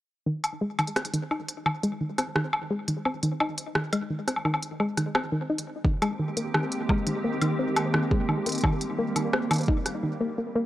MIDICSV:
0, 0, Header, 1, 4, 480
1, 0, Start_track
1, 0, Tempo, 697674
1, 182, Time_signature, 4, 2, 24, 8
1, 7333, End_track
2, 0, Start_track
2, 0, Title_t, "Ambient pad"
2, 0, Program_c, 0, 92
2, 4023, Note_on_c, 0, 51, 81
2, 4023, Note_on_c, 0, 56, 78
2, 4023, Note_on_c, 0, 58, 77
2, 4023, Note_on_c, 0, 60, 80
2, 4023, Note_on_c, 0, 67, 89
2, 5923, Note_off_c, 0, 56, 0
2, 5923, Note_off_c, 0, 58, 0
2, 5943, Note_on_c, 0, 55, 77
2, 5943, Note_on_c, 0, 58, 76
2, 6875, Note_off_c, 0, 51, 0
2, 6875, Note_off_c, 0, 60, 0
2, 6875, Note_off_c, 0, 67, 0
2, 6893, Note_off_c, 0, 55, 0
2, 6893, Note_off_c, 0, 58, 0
2, 7333, End_track
3, 0, Start_track
3, 0, Title_t, "Synth arpeggio sound"
3, 0, Program_c, 1, 84
3, 181, Note_on_c, 1, 51, 97
3, 295, Note_off_c, 1, 51, 0
3, 421, Note_on_c, 1, 56, 99
3, 525, Note_off_c, 1, 56, 0
3, 541, Note_on_c, 1, 51, 77
3, 656, Note_off_c, 1, 51, 0
3, 661, Note_on_c, 1, 60, 79
3, 765, Note_off_c, 1, 60, 0
3, 781, Note_on_c, 1, 51, 96
3, 895, Note_off_c, 1, 51, 0
3, 901, Note_on_c, 1, 63, 75
3, 1005, Note_off_c, 1, 63, 0
3, 1141, Note_on_c, 1, 51, 82
3, 1245, Note_off_c, 1, 51, 0
3, 1261, Note_on_c, 1, 56, 98
3, 1324, Note_off_c, 1, 56, 0
3, 1381, Note_on_c, 1, 51, 73
3, 1444, Note_off_c, 1, 51, 0
3, 1501, Note_on_c, 1, 60, 76
3, 1605, Note_off_c, 1, 60, 0
3, 1621, Note_on_c, 1, 51, 96
3, 1736, Note_off_c, 1, 51, 0
3, 1862, Note_on_c, 1, 56, 97
3, 1965, Note_off_c, 1, 56, 0
3, 1982, Note_on_c, 1, 51, 77
3, 2096, Note_off_c, 1, 51, 0
3, 2102, Note_on_c, 1, 60, 80
3, 2205, Note_off_c, 1, 60, 0
3, 2222, Note_on_c, 1, 51, 94
3, 2336, Note_off_c, 1, 51, 0
3, 2342, Note_on_c, 1, 63, 74
3, 2445, Note_off_c, 1, 63, 0
3, 2582, Note_on_c, 1, 51, 81
3, 2685, Note_off_c, 1, 51, 0
3, 2702, Note_on_c, 1, 56, 95
3, 2764, Note_off_c, 1, 56, 0
3, 2822, Note_on_c, 1, 51, 72
3, 2884, Note_off_c, 1, 51, 0
3, 2942, Note_on_c, 1, 60, 70
3, 3045, Note_off_c, 1, 60, 0
3, 3062, Note_on_c, 1, 51, 98
3, 3176, Note_off_c, 1, 51, 0
3, 3302, Note_on_c, 1, 56, 98
3, 3405, Note_off_c, 1, 56, 0
3, 3422, Note_on_c, 1, 51, 77
3, 3536, Note_off_c, 1, 51, 0
3, 3542, Note_on_c, 1, 60, 79
3, 3645, Note_off_c, 1, 60, 0
3, 3662, Note_on_c, 1, 51, 99
3, 3776, Note_off_c, 1, 51, 0
3, 3782, Note_on_c, 1, 63, 73
3, 3885, Note_off_c, 1, 63, 0
3, 4022, Note_on_c, 1, 51, 77
3, 4125, Note_off_c, 1, 51, 0
3, 4142, Note_on_c, 1, 56, 98
3, 4204, Note_off_c, 1, 56, 0
3, 4262, Note_on_c, 1, 51, 76
3, 4324, Note_off_c, 1, 51, 0
3, 4382, Note_on_c, 1, 58, 79
3, 4485, Note_off_c, 1, 58, 0
3, 4502, Note_on_c, 1, 51, 96
3, 4616, Note_off_c, 1, 51, 0
3, 4742, Note_on_c, 1, 56, 99
3, 4845, Note_off_c, 1, 56, 0
3, 4862, Note_on_c, 1, 51, 72
3, 4976, Note_off_c, 1, 51, 0
3, 4982, Note_on_c, 1, 58, 85
3, 5085, Note_off_c, 1, 58, 0
3, 5102, Note_on_c, 1, 51, 100
3, 5216, Note_off_c, 1, 51, 0
3, 5222, Note_on_c, 1, 60, 72
3, 5325, Note_off_c, 1, 60, 0
3, 5462, Note_on_c, 1, 51, 80
3, 5565, Note_off_c, 1, 51, 0
3, 5582, Note_on_c, 1, 56, 93
3, 5644, Note_off_c, 1, 56, 0
3, 5702, Note_on_c, 1, 51, 71
3, 5764, Note_off_c, 1, 51, 0
3, 5822, Note_on_c, 1, 58, 77
3, 5925, Note_off_c, 1, 58, 0
3, 5942, Note_on_c, 1, 51, 105
3, 6056, Note_off_c, 1, 51, 0
3, 6182, Note_on_c, 1, 58, 98
3, 6285, Note_off_c, 1, 58, 0
3, 6302, Note_on_c, 1, 51, 82
3, 6416, Note_off_c, 1, 51, 0
3, 6422, Note_on_c, 1, 60, 81
3, 6525, Note_off_c, 1, 60, 0
3, 6542, Note_on_c, 1, 51, 102
3, 6656, Note_off_c, 1, 51, 0
3, 6661, Note_on_c, 1, 63, 76
3, 6765, Note_off_c, 1, 63, 0
3, 6902, Note_on_c, 1, 51, 78
3, 7005, Note_off_c, 1, 51, 0
3, 7022, Note_on_c, 1, 58, 100
3, 7084, Note_off_c, 1, 58, 0
3, 7142, Note_on_c, 1, 58, 71
3, 7245, Note_off_c, 1, 58, 0
3, 7262, Note_on_c, 1, 58, 99
3, 7333, Note_off_c, 1, 58, 0
3, 7333, End_track
4, 0, Start_track
4, 0, Title_t, "Drums"
4, 301, Note_on_c, 9, 42, 52
4, 301, Note_on_c, 9, 76, 54
4, 370, Note_off_c, 9, 42, 0
4, 370, Note_off_c, 9, 76, 0
4, 541, Note_on_c, 9, 42, 28
4, 541, Note_on_c, 9, 76, 78
4, 601, Note_off_c, 9, 42, 0
4, 601, Note_on_c, 9, 42, 37
4, 610, Note_off_c, 9, 76, 0
4, 661, Note_off_c, 9, 42, 0
4, 661, Note_on_c, 9, 37, 115
4, 661, Note_on_c, 9, 42, 44
4, 722, Note_off_c, 9, 42, 0
4, 722, Note_on_c, 9, 42, 51
4, 730, Note_off_c, 9, 37, 0
4, 781, Note_off_c, 9, 42, 0
4, 781, Note_on_c, 9, 42, 52
4, 850, Note_off_c, 9, 42, 0
4, 901, Note_on_c, 9, 76, 48
4, 970, Note_off_c, 9, 76, 0
4, 1021, Note_on_c, 9, 42, 65
4, 1090, Note_off_c, 9, 42, 0
4, 1142, Note_on_c, 9, 76, 77
4, 1210, Note_off_c, 9, 76, 0
4, 1262, Note_on_c, 9, 42, 36
4, 1330, Note_off_c, 9, 42, 0
4, 1501, Note_on_c, 9, 37, 55
4, 1501, Note_on_c, 9, 42, 60
4, 1501, Note_on_c, 9, 76, 50
4, 1570, Note_off_c, 9, 37, 0
4, 1570, Note_off_c, 9, 42, 0
4, 1570, Note_off_c, 9, 76, 0
4, 1621, Note_on_c, 9, 37, 112
4, 1690, Note_off_c, 9, 37, 0
4, 1741, Note_on_c, 9, 76, 75
4, 1810, Note_off_c, 9, 76, 0
4, 1981, Note_on_c, 9, 42, 65
4, 2050, Note_off_c, 9, 42, 0
4, 2101, Note_on_c, 9, 76, 55
4, 2170, Note_off_c, 9, 76, 0
4, 2221, Note_on_c, 9, 42, 53
4, 2290, Note_off_c, 9, 42, 0
4, 2341, Note_on_c, 9, 76, 77
4, 2410, Note_off_c, 9, 76, 0
4, 2461, Note_on_c, 9, 42, 66
4, 2530, Note_off_c, 9, 42, 0
4, 2581, Note_on_c, 9, 37, 120
4, 2650, Note_off_c, 9, 37, 0
4, 2702, Note_on_c, 9, 42, 55
4, 2702, Note_on_c, 9, 76, 49
4, 2770, Note_off_c, 9, 42, 0
4, 2770, Note_off_c, 9, 76, 0
4, 2942, Note_on_c, 9, 37, 58
4, 2942, Note_on_c, 9, 42, 63
4, 2942, Note_on_c, 9, 76, 32
4, 3002, Note_off_c, 9, 76, 0
4, 3002, Note_on_c, 9, 76, 42
4, 3011, Note_off_c, 9, 37, 0
4, 3011, Note_off_c, 9, 42, 0
4, 3062, Note_off_c, 9, 76, 0
4, 3062, Note_on_c, 9, 76, 53
4, 3122, Note_off_c, 9, 76, 0
4, 3122, Note_on_c, 9, 76, 59
4, 3182, Note_on_c, 9, 42, 37
4, 3191, Note_off_c, 9, 76, 0
4, 3251, Note_off_c, 9, 42, 0
4, 3302, Note_on_c, 9, 76, 48
4, 3371, Note_off_c, 9, 76, 0
4, 3422, Note_on_c, 9, 37, 55
4, 3422, Note_on_c, 9, 42, 63
4, 3491, Note_off_c, 9, 37, 0
4, 3491, Note_off_c, 9, 42, 0
4, 3542, Note_on_c, 9, 37, 117
4, 3542, Note_on_c, 9, 76, 78
4, 3611, Note_off_c, 9, 37, 0
4, 3611, Note_off_c, 9, 76, 0
4, 3842, Note_on_c, 9, 42, 64
4, 3911, Note_off_c, 9, 42, 0
4, 4022, Note_on_c, 9, 36, 120
4, 4091, Note_off_c, 9, 36, 0
4, 4142, Note_on_c, 9, 42, 52
4, 4142, Note_on_c, 9, 76, 74
4, 4211, Note_off_c, 9, 42, 0
4, 4211, Note_off_c, 9, 76, 0
4, 4382, Note_on_c, 9, 42, 66
4, 4450, Note_off_c, 9, 42, 0
4, 4502, Note_on_c, 9, 37, 119
4, 4502, Note_on_c, 9, 76, 46
4, 4571, Note_off_c, 9, 37, 0
4, 4571, Note_off_c, 9, 76, 0
4, 4622, Note_on_c, 9, 42, 49
4, 4691, Note_off_c, 9, 42, 0
4, 4742, Note_on_c, 9, 36, 124
4, 4742, Note_on_c, 9, 76, 72
4, 4810, Note_off_c, 9, 36, 0
4, 4811, Note_off_c, 9, 76, 0
4, 4862, Note_on_c, 9, 42, 63
4, 4931, Note_off_c, 9, 42, 0
4, 5102, Note_on_c, 9, 42, 38
4, 5102, Note_on_c, 9, 76, 48
4, 5170, Note_off_c, 9, 42, 0
4, 5170, Note_off_c, 9, 76, 0
4, 5342, Note_on_c, 9, 37, 59
4, 5342, Note_on_c, 9, 42, 63
4, 5342, Note_on_c, 9, 76, 73
4, 5411, Note_off_c, 9, 37, 0
4, 5411, Note_off_c, 9, 42, 0
4, 5411, Note_off_c, 9, 76, 0
4, 5462, Note_on_c, 9, 37, 127
4, 5531, Note_off_c, 9, 37, 0
4, 5581, Note_on_c, 9, 36, 106
4, 5650, Note_off_c, 9, 36, 0
4, 5702, Note_on_c, 9, 76, 49
4, 5771, Note_off_c, 9, 76, 0
4, 5822, Note_on_c, 9, 42, 62
4, 5842, Note_off_c, 9, 42, 0
4, 5842, Note_on_c, 9, 42, 53
4, 5862, Note_off_c, 9, 42, 0
4, 5862, Note_on_c, 9, 42, 42
4, 5882, Note_off_c, 9, 42, 0
4, 5882, Note_on_c, 9, 42, 34
4, 5902, Note_off_c, 9, 42, 0
4, 5902, Note_on_c, 9, 42, 28
4, 5922, Note_off_c, 9, 42, 0
4, 5922, Note_on_c, 9, 42, 24
4, 5941, Note_on_c, 9, 36, 112
4, 5942, Note_on_c, 9, 76, 79
4, 5991, Note_off_c, 9, 42, 0
4, 6010, Note_off_c, 9, 36, 0
4, 6010, Note_off_c, 9, 76, 0
4, 6062, Note_on_c, 9, 42, 49
4, 6130, Note_off_c, 9, 42, 0
4, 6301, Note_on_c, 9, 42, 66
4, 6301, Note_on_c, 9, 76, 48
4, 6370, Note_off_c, 9, 42, 0
4, 6370, Note_off_c, 9, 76, 0
4, 6421, Note_on_c, 9, 37, 113
4, 6490, Note_off_c, 9, 37, 0
4, 6542, Note_on_c, 9, 42, 46
4, 6542, Note_on_c, 9, 76, 72
4, 6559, Note_off_c, 9, 42, 0
4, 6559, Note_on_c, 9, 42, 41
4, 6576, Note_off_c, 9, 42, 0
4, 6576, Note_on_c, 9, 42, 33
4, 6593, Note_off_c, 9, 42, 0
4, 6593, Note_on_c, 9, 42, 26
4, 6610, Note_off_c, 9, 76, 0
4, 6611, Note_off_c, 9, 42, 0
4, 6611, Note_on_c, 9, 42, 22
4, 6628, Note_off_c, 9, 42, 0
4, 6628, Note_on_c, 9, 42, 18
4, 6645, Note_off_c, 9, 42, 0
4, 6645, Note_on_c, 9, 42, 14
4, 6661, Note_on_c, 9, 36, 119
4, 6714, Note_off_c, 9, 42, 0
4, 6730, Note_off_c, 9, 36, 0
4, 6782, Note_on_c, 9, 37, 57
4, 6782, Note_on_c, 9, 42, 61
4, 6851, Note_off_c, 9, 37, 0
4, 6851, Note_off_c, 9, 42, 0
4, 7333, End_track
0, 0, End_of_file